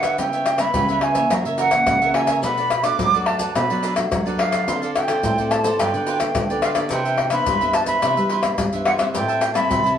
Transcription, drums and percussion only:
0.03 pandeiro, tamborim, maracas, surdo
0.18 pandeiro, maracas, surdo
0.33 pandeiro, maracas
0.46 pandeiro, tamborim, maracas
0.58 pandeiro, tamborim, maracas
0.74 pandeiro, maracas, surdo
0.89 pandeiro, maracas, surdo
1.01 pandeiro, tamborim
1.15 pandeiro, maracas, surdo
1.30 pandeiro, tamborim, maracas, surdo
1.45 pandeiro, maracas
1.58 pandeiro, maracas
1.71 pandeiro, tamborim, maracas, surdo
1.87 pandeiro, tamborim, maracas, surdo
2.02 pandeiro, maracas
2.14 pandeiro, tamborim
2.27 pandeiro, tamborim, maracas, surdo
2.43 pandeiro, maracas, surdo
2.58 pandeiro, maracas
2.70 pandeiro, tamborim, maracas, surdo
2.84 pandeiro, tamborim, maracas
2.99 pandeiro, maracas, surdo
3.14 pandeiro, maracas, surdo
3.26 pandeiro, tamborim
3.39 pandeiro, maracas, surdo
3.55 pandeiro, tamborim, maracas, surdo
3.70 pandeiro, maracas
3.83 pandeiro, maracas
3.96 pandeiro, tamborim, maracas, surdo
4.12 pandeiro, tamborim, maracas, surdo
4.26 pandeiro, maracas
4.39 pandeiro, tamborim
4.52 pandeiro, tamborim, maracas, surdo
4.68 pandeiro, maracas, surdo
4.83 pandeiro, maracas
4.96 pandeiro, tamborim, maracas, surdo
5.08 pandeiro, tamborim, maracas
5.23 pandeiro, maracas, surdo
5.38 pandeiro, maracas, surdo
5.51 pandeiro, tamborim, maracas
5.64 pandeiro, maracas, surdo
5.79 pandeiro, tamborim, maracas, surdo
5.94 pandeiro, maracas
6.07 pandeiro, maracas
6.20 pandeiro, tamborim, maracas, surdo
6.35 pandeiro, tamborim, maracas, surdo
6.50 pandeiro, maracas
6.62 pandeiro, tamborim, maracas
6.75 pandeiro, tamborim, maracas, surdo
6.90 pandeiro, maracas, surdo
7.05 pandeiro, maracas
7.18 pandeiro, tamborim, surdo
7.30 pandeiro, tamborim, maracas
7.46 pandeiro, maracas, surdo
7.61 pandeiro, maracas, surdo
7.73 pandeiro, tamborim, maracas
7.86 pandeiro, maracas, surdo
8.02 pandeiro, tamborim, maracas, surdo
8.17 pandeiro, maracas
8.29 pandeiro
8.43 pandeiro, tamborim, maracas, surdo
8.58 pandeiro, tamborim, maracas, surdo
8.73 pandeiro, maracas
8.85 pandeiro, tamborim
8.99 pandeiro, tamborim, maracas, surdo
9.15 pandeiro, maracas, surdo
9.29 pandeiro, maracas
9.41 pandeiro, tamborim, maracas
9.55 pandeiro, tamborim, maracas
9.71 pandeiro, maracas, surdo
9.86 pandeiro, maracas, surdo

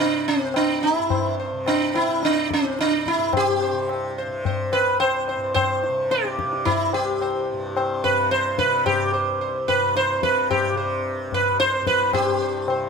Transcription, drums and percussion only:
0.54 tabla na
1.10 tabla na, tabla ge
1.66 tabla na
1.94 tabla na
2.23 tabla te
2.36 tabla te
2.51 tabla ke
2.65 tabla te
2.79 tabla te
2.92 tabla te
3.06 tabla ke
3.19 tabla te
3.33 tabla na, tabla ge
3.89 tabla na
4.45 tabla tin, tabla ge
4.72 tabla na
5.00 tabla na
5.28 tabla na
5.56 tabla na, tabla ge
5.84 tabla te
6.11 tabla te
6.25 tabla te
6.39 tabla ke
6.53 tabla te
6.66 tabla tin, tabla ge
6.93 tabla na
7.21 tabla na
7.77 tabla na
8.04 tabla tin, tabla ge
8.31 tabla te
8.58 tabla ke
8.86 tabla na, tabla ge
9.68 tabla tin, tabla ge
9.96 tabla te
10.23 tabla ke
10.51 tabla na, tabla ge
11.32 tabla tin, tabla ge
11.60 tabla te
11.87 tabla ke
12.13 tabla na, tabla ge
12.68 tabla na

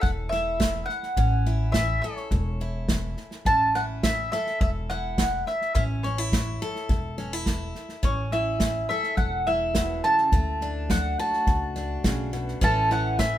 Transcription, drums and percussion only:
0.03 kick, snare
0.32 snare
0.60 kick, snare, hi-hat pedal
0.89 snare
1.03 snare
1.16 kick, snare
1.46 snare
1.74 kick, snare, hi-hat pedal
2.02 snare
2.17 snare
2.31 kick, snare
2.60 snare
2.88 kick, snare, hi-hat pedal
3.17 snare
3.31 snare
3.45 kick, snare
3.75 snare
4.03 kick, snare, hi-hat pedal
4.32 snare
4.46 snare
4.61 kick, snare
4.90 snare
5.18 kick, snare, hi-hat pedal
5.47 snare
5.61 snare
5.75 kick, snare
6.04 snare
6.32 kick, snare, hi-hat pedal
6.61 snare
6.75 snare
6.89 kick, snare
7.18 snare
7.46 kick, snare, hi-hat pedal
7.75 snare
7.89 snare
8.03 kick, snare
8.31 snare
8.60 kick, snare, hi-hat pedal
8.89 snare
9.03 snare
9.17 kick, snare
9.46 snare
9.75 kick, snare, hi-hat pedal
10.04 snare
10.18 snare
10.32 kick, snare
10.61 snare
10.90 kick, snare, hi-hat pedal
11.19 snare
11.33 snare
11.47 kick, snare
11.76 snare
12.04 kick, snare, hi-hat pedal
12.33 snare
12.48 snare
12.62 kick, snare
12.91 snare
13.19 kick, snare, hi-hat pedal

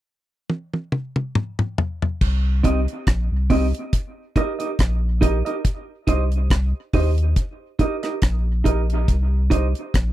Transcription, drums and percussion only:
0.50 high tom
0.74 high tom
0.92 mid tom
1.16 mid tom
1.35 mid tom
1.59 mid tom
1.78 floor tom
2.02 floor tom
2.21 kick, crash
2.64 kick, closed hi-hat
2.88 closed hi-hat
3.07 kick, cross-stick, closed hi-hat
3.50 kick, open hi-hat
3.75 closed hi-hat
3.93 kick, closed hi-hat
4.36 kick, closed hi-hat
4.60 closed hi-hat
4.79 kick, cross-stick, closed hi-hat
5.22 kick, closed hi-hat
5.46 closed hi-hat
5.65 kick, closed hi-hat
6.07 kick, closed hi-hat
6.32 closed hi-hat
6.50 kick, cross-stick, closed hi-hat
6.93 kick, open hi-hat
7.18 closed hi-hat
7.36 kick, closed hi-hat
7.79 kick, closed hi-hat
8.03 cross-stick, closed hi-hat
8.22 kick, cross-stick, closed hi-hat
8.65 kick, closed hi-hat
8.90 closed hi-hat
9.08 kick, closed hi-hat
9.51 kick, closed hi-hat
9.75 closed hi-hat
9.94 kick, cross-stick, closed hi-hat

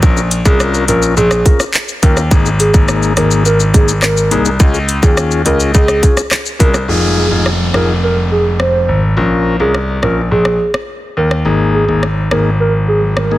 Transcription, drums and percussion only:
0.03 kick, high bongo, shaker
0.17 high bongo, shaker
0.31 closed hi-hat, shaker
0.45 kick, shaker
0.60 cross-stick, shaker
0.74 shaker
0.88 closed hi-hat, shaker
1.02 shaker
1.17 high bongo, shaker
1.31 cross-stick, high bongo, shaker
1.46 kick, closed hi-hat, high bongo, shaker
1.60 cross-stick, shaker
1.74 clap, shaker
1.88 shaker
2.03 kick, closed hi-hat, low bongo, shaker
2.17 cross-stick, high bongo, shaker
2.31 kick, high bongo, shaker
2.46 high bongo, shaker
2.60 closed hi-hat, shaker
2.74 kick, shaker
2.88 cross-stick, shaker
3.03 shaker
3.17 cross-stick, closed hi-hat, shaker
3.31 shaker
3.46 high bongo, shaker
3.60 high bongo, shaker
3.74 kick, closed hi-hat, high bongo, shaker
3.88 shaker
4.02 cross-stick, clap, shaker
4.17 shaker
4.31 closed hi-hat, low bongo, shaker
4.45 high bongo, shaker
4.60 kick, high bongo, shaker
4.74 high bongo, shaker
4.89 closed hi-hat, shaker
5.03 kick, shaker
5.17 cross-stick, shaker
5.31 shaker
5.46 closed hi-hat, low bongo, shaker
5.60 shaker
5.74 kick, high bongo, shaker
5.88 cross-stick, high bongo, shaker
6.03 kick, closed hi-hat, high bongo, shaker
6.17 cross-stick, shaker
6.31 cross-stick, clap, shaker
6.46 shaker
6.60 kick, closed hi-hat, low bongo, shaker
6.74 cross-stick, high bongo, shaker
7.46 cross-stick
7.74 cross-stick
8.60 cross-stick
9.74 cross-stick
10.03 cross-stick
10.45 cross-stick
10.74 cross-stick
11.31 cross-stick
12.03 cross-stick
12.31 cross-stick
13.17 cross-stick

